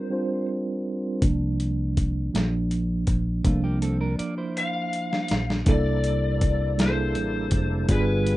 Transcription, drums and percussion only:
1.22 kick medium
1.22 closed hi-hat medium
1.60 closed hi-hat soft
1.97 kick medium
1.97 closed hi-hat soft
2.35 snare medium
2.35 closed hi-hat medium
2.71 closed hi-hat soft
3.07 kick medium
3.07 closed hi-hat medium
3.45 kick loud
3.45 closed hi-hat medium
3.82 closed hi-hat medium
4.19 closed hi-hat medium
4.57 closed hi-hat medium
4.93 closed hi-hat soft
5.13 snare medium
5.28 snare medium
5.28 closed hi-hat medium
5.50 snare medium
5.66 kick loud
5.66 closed hi-hat medium
6.04 closed hi-hat medium
6.41 kick medium
6.41 closed hi-hat medium
6.79 snare loud
6.79 closed hi-hat medium
7.15 closed hi-hat soft
7.51 kick medium
7.51 closed hi-hat medium
7.89 kick loud
7.89 closed hi-hat medium
8.27 closed hi-hat medium

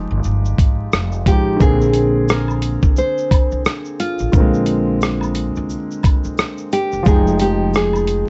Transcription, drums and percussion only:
0.24 shaker medium
0.45 shaker soft
0.58 kick medium
0.58 closed hi-hat medium
0.58 shaker soft
0.92 cross-stick loud
0.92 shaker medium
1.12 shaker soft
1.26 kick medium
1.26 closed hi-hat medium
1.26 shaker medium
1.60 kick loud
1.60 shaker medium
1.81 shaker soft
1.93 closed hi-hat medium
1.93 shaker medium
1.93 shaker soft
2.28 cross-stick loud
2.28 shaker medium
2.48 high woodblock medium
2.48 shaker soft
2.62 closed hi-hat medium
2.62 shaker medium
2.62 shaker soft
2.82 kick medium
2.82 shaker soft
2.97 shaker medium
3.18 shaker soft
3.31 kick medium
3.31 closed hi-hat medium
3.31 high woodblock medium
3.31 shaker soft
3.51 shaker soft
3.65 cross-stick loud
3.65 shaker medium
3.85 shaker soft
4.00 closed hi-hat medium
4.00 shaker soft
4.00 shaker medium
4.19 shaker medium
4.33 kick loud
4.33 shaker medium
4.54 shaker soft
4.66 closed hi-hat medium
4.66 shaker medium
4.66 shaker soft
5.01 cross-stick loud
5.01 shaker medium
5.21 high woodblock medium
5.21 shaker soft
5.35 closed hi-hat medium
5.35 shaker medium
5.35 shaker soft
5.56 shaker soft
5.69 shaker medium
5.91 shaker soft
6.03 kick medium
6.03 closed hi-hat medium
6.03 high woodblock medium
6.03 shaker soft
6.05 shaker soft
6.24 shaker soft
6.38 cross-stick loud
6.38 shaker medium
6.58 shaker soft
6.72 closed hi-hat medium
6.72 shaker soft
6.72 shaker medium
6.92 shaker medium
7.05 kick loud
7.05 shaker medium
7.27 shaker soft
7.39 closed hi-hat medium
7.39 shaker soft
7.39 shaker medium
7.74 cross-stick loud
7.74 shaker medium
7.93 high woodblock medium
7.93 shaker soft
8.07 closed hi-hat medium
8.07 shaker medium
8.07 shaker soft

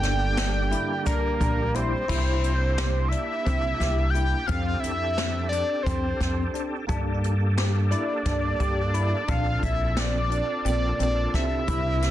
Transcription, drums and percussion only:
0.03 snare soft
0.03 closed hi-hat medium
0.03 shaker soft
0.37 snare loud
0.37 closed hi-hat medium
0.72 closed hi-hat medium
1.06 kick loud
1.06 closed hi-hat medium
1.06 shaker medium
1.41 kick medium
1.41 closed hi-hat medium
1.75 closed hi-hat medium
2.09 kick loud
2.09 crash medium
2.44 closed hi-hat medium
2.78 snare medium
2.78 closed hi-hat medium
3.12 closed hi-hat medium
3.46 kick medium
3.46 closed hi-hat medium
3.81 kick medium
3.81 snare soft
3.81 closed hi-hat medium
4.15 closed hi-hat medium
4.49 kick loud
4.49 closed hi-hat medium
4.83 closed hi-hat soft
5.18 snare medium
5.18 closed hi-hat medium
5.52 closed hi-hat medium
5.86 kick medium
5.86 closed hi-hat medium
6.21 kick medium
6.21 snare soft
6.21 closed hi-hat medium
6.55 closed hi-hat medium
6.89 kick loud
6.89 closed hi-hat medium
7.24 closed hi-hat medium
7.58 snare medium
7.58 closed hi-hat medium
7.92 closed hi-hat medium
8.25 kick medium
8.25 snare soft
8.25 closed hi-hat medium
8.60 kick medium
8.60 closed hi-hat medium
8.94 closed hi-hat medium
9.28 kick loud
9.28 closed hi-hat medium
9.63 kick medium
9.63 closed hi-hat medium
9.97 snare loud
9.97 closed hi-hat medium
10.31 closed hi-hat medium
10.65 closed hi-hat medium
11.00 closed hi-hat medium
11.34 kick medium
11.34 snare soft
11.34 closed hi-hat medium
11.68 kick loud
11.68 closed hi-hat medium
12.02 snare soft
12.02 closed hi-hat medium

